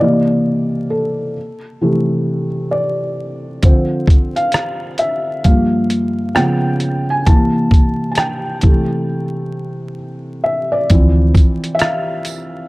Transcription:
0.00 felt piano C3 E3 A#3 D5
0.90 felt piano A4
1.81 felt piano C3 E3 A3
2.71 felt piano D5
3.63 felt piano D3 F3 C4 C5, kick, closed hi-hat
4.08 kick, closed hi-hat
4.36 felt piano F5, closed hi-hat
4.52 cross-stick, closed hi-hat
4.98 felt piano E5, closed hi-hat
5.44 felt piano G2 F3 A#3 F5, kick, closed hi-hat
5.90 closed hi-hat
6.35 felt piano C#3 F3 B3 G5, cross-stick, closed hi-hat
6.80 closed hi-hat
7.10 felt piano G#5
7.26 felt piano C3 E3 A#3 A5, kick, closed hi-hat
7.71 kick, closed hi-hat
8.12 felt piano A5, closed hi-hat
8.17 felt piano G5, cross-stick
8.61 felt piano C3 E3 A3, kick, closed hi-hat
10.44 felt piano E5
10.72 felt piano D5
10.90 fingered electric bass D2, felt piano E3 F3 C4, kick, closed hi-hat
11.35 kick, closed hi-hat, tambourine
11.64 closed hi-hat
11.75 felt piano E5
11.79 felt piano F5, cross-stick, closed hi-hat
12.25 closed hi-hat, tambourine

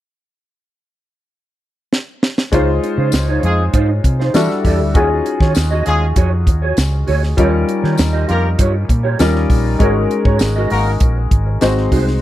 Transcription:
1.93 snare
2.23 snare
2.38 snare
2.52 fingered electric bass C#2, grand piano G#3 D#4 F4 C5 C#5, clean electric guitar D#4 F4 C5, kick, closed hi-hat
2.68 muted clean electric guitar stroke
2.83 muted clean electric guitar stroke, closed hi-hat
2.98 fingered electric bass C#3, clean electric guitar D#4 F4 C5
3.12 fingered electric bass C#2, muted clean electric guitar stroke, snare, closed hi-hat, tambourine
3.28 clean electric guitar D#4 F4 C#5
3.43 fingered electric bass F2, horn section G#3 D#4 F4 G#4, muted clean electric guitar stroke, closed hi-hat
3.58 muted clean electric guitar stroke
3.73 fingered electric bass G#2, clean electric guitar D#4 F4 C5, kick, closed hi-hat
3.89 muted clean electric guitar stroke
4.04 fingered electric bass C3, muted clean electric guitar stroke, kick, closed hi-hat
4.19 clean electric guitar D#4 F4 C5, snare
4.34 fingered electric bass E3, grand piano G3 D4 E4 F#4 A4, snare, closed hi-hat, tambourine
4.49 muted clean electric guitar stroke, snare
4.65 fingered electric bass E2, clean electric guitar G4 A4 D5, kick, open hi-hat
4.80 fingered electric bass D2, muted clean electric guitar stroke
4.94 fingered electric bass D#2, grand piano C#4 D#4 F4 F#4 G#4, clean electric guitar F#4 G#4 C#5, kick, closed hi-hat
5.10 muted clean electric guitar stroke
5.26 muted clean electric guitar stroke, closed hi-hat
5.40 fingered electric bass D#3, clean electric guitar F#4 G#4 C#5, kick, snare
5.55 fingered electric bass D#2, muted clean electric guitar stroke, snare, closed hi-hat, tambourine
5.71 clean electric guitar F#4 G#4 D#5
5.86 fingered electric bass D#2, horn section G#3 C#4 F4 G#4, muted clean electric guitar stroke, closed hi-hat
6.01 muted clean electric guitar stroke
6.16 fingered electric bass F2, clean electric guitar F#4 G#4 C#5, kick, closed hi-hat
6.32 muted clean electric guitar stroke
6.47 fingered electric bass D#2, muted clean electric guitar stroke, kick, closed hi-hat
6.62 clean electric guitar F#4 G#4 C#5
6.77 fingered electric bass C#2, snare, closed hi-hat, tambourine
6.92 muted clean electric guitar stroke
7.07 fingered electric bass D2, clean electric guitar F#4 G#4 C#5, open hi-hat
7.22 muted clean electric guitar stroke, snare
7.37 fingered electric bass D#2, grand piano G3 C#4 D#4 F4 A#4, clean electric guitar F4 G4 C#5, kick, closed hi-hat
7.53 muted clean electric guitar stroke
7.68 muted clean electric guitar stroke, closed hi-hat
7.83 fingered electric bass D#3, clean electric guitar F4 G4 C#5, snare
7.97 fingered electric bass D#2, muted clean electric guitar stroke, snare, closed hi-hat, tambourine
8.13 clean electric guitar F4 G4 D#5
8.28 fingered electric bass F2, horn section A#3 F4 G4 A#4, muted clean electric guitar stroke, closed hi-hat
8.43 muted clean electric guitar stroke
8.58 fingered electric bass G2, clean electric guitar F4 G4 C#5, kick, closed hi-hat
8.73 muted clean electric guitar stroke
8.88 fingered electric bass A#2, muted clean electric guitar stroke, kick, closed hi-hat
9.03 clean electric guitar F4 G4 C#5
9.19 fingered electric bass D#2, grand piano G3 C#4 D#4 F4 A#4, muted clean electric guitar stroke, snare, closed hi-hat, tambourine
9.34 muted clean electric guitar stroke, snare
9.50 fingered electric bass A#1, kick, open hi-hat
9.64 muted clean electric guitar stroke
9.79 fingered electric bass G#1, grand piano G#3 C#4 D#4 F#4 A#4, clean electric guitar F#4 A#4 C#5, kick, closed hi-hat
9.95 muted clean electric guitar stroke
10.10 muted clean electric guitar stroke, closed hi-hat
10.25 fingered electric bass G#2, clean electric guitar F#4 A#4 C#5, kick
10.39 fingered electric bass G#1, muted clean electric guitar stroke, snare, closed hi-hat, tambourine
10.56 clean electric guitar F#4 A#4 D#5
10.70 fingered electric bass G#1, horn section A#3 D#4 F#4 A#4, muted clean electric guitar stroke, open hi-hat
10.86 muted clean electric guitar stroke
11.00 fingered electric bass A#1, muted clean electric guitar stroke, kick, closed hi-hat
11.16 muted clean electric guitar stroke
11.31 fingered electric bass G#1, kick, closed hi-hat
11.46 muted clean electric guitar stroke
11.61 fingered electric bass G#1, grand piano G#3 C4 D#4 F#4 C5, snare, closed hi-hat, tambourine
11.76 muted clean electric guitar stroke, snare
11.91 fingered electric bass C2, clean electric guitar D#4 F#4 C5, kick, open hi-hat
12.07 muted clean electric guitar stroke, snare

